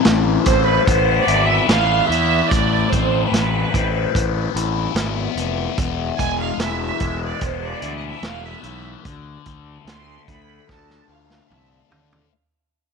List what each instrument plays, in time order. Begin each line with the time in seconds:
Already playing: distorted electric guitar A2 C4
0.05 fingered electric bass A1, distorted electric guitar E3, snare, closed hi-hat
0.43 fingered electric bass A1, distorted electric guitar C4, string section C5, kick, closed hi-hat
0.64 string section B4
0.85 fingered electric bass A1, distorted electric guitar B3, string section C5, kick, closed hi-hat
1.22 string section D5
1.27 fingered electric bass G#1, distorted electric guitar E4, closed hi-hat
1.45 string section E5
1.67 fingered electric bass A1, distorted electric guitar B3, string section F5, snare, closed hi-hat
2.05 string section E5
2.09 fingered electric bass E2, distorted electric guitar E3, closed hi-hat
2.48 fingered electric bass A1, string section D5, kick, closed hi-hat
2.52 distorted electric guitar A2
2.89 fingered electric bass A1, distorted electric guitar C4, string section C5, kick, closed hi-hat
3.27 string section B4
3.32 fingered electric bass A1, distorted electric guitar E3, snare, closed hi-hat
3.74 fingered electric bass A1, distorted electric guitar C4, kick, closed hi-hat
4.15 fingered electric bass A1, distorted electric guitar B3, kick, closed hi-hat
4.54 fingered electric bass A1, distorted electric guitar E4, closed hi-hat
4.95 fingered electric bass G#1, distorted electric guitar B3, snare, closed hi-hat
5.35 fingered electric bass F1, distorted electric guitar E3, closed hi-hat
5.78 fingered electric bass E1, distorted electric guitar E2, kick, closed hi-hat
6.17 fingered electric bass E1, distorted electric guitar G#3, string section G#5, kick, closed hi-hat
6.38 string section F5
6.58 fingered electric bass E1, distorted electric guitar E3, snare, closed hi-hat
6.62 string section E5
6.83 string section E5
7.00 fingered electric bass E1, distorted electric guitar G#3, kick, closed hi-hat
7.25 string section D5
7.41 fingered electric bass E1, distorted electric guitar B3, string section C5, kick, closed hi-hat
7.66 string section D5
7.82 fingered electric bass D2, distorted electric guitar E4, closed hi-hat
7.98 string section D#5
8.09 string section E5
8.22 fingered electric bass E1, distorted electric guitar B3, snare, closed hi-hat
8.27 string section F5
8.47 string section E5
8.63 fingered electric bass B1, distorted electric guitar E3, closed hi-hat
9.05 fingered electric bass D2, distorted electric guitar D3, kick, closed hi-hat
9.46 fingered electric bass D2, distorted electric guitar A3, kick, closed hi-hat
9.85 fingered electric bass D2, distorted electric guitar D3, string section C6, snare, closed hi-hat
10.28 fingered electric bass D2, distorted electric guitar A3, string section B5, kick, closed hi-hat
10.69 fingered electric bass D2, distorted electric guitar D4, string section A5, kick, snare
10.90 snare
11.08 fingered electric bass D2, distorted electric guitar F4, string section F5
11.30 snare
11.49 fingered electric bass C2, distorted electric guitar D4, string section E5, mid tom
11.78 string section F5
11.89 distorted electric guitar D3, fingered electric bass D3, floor tom
12.13 floor tom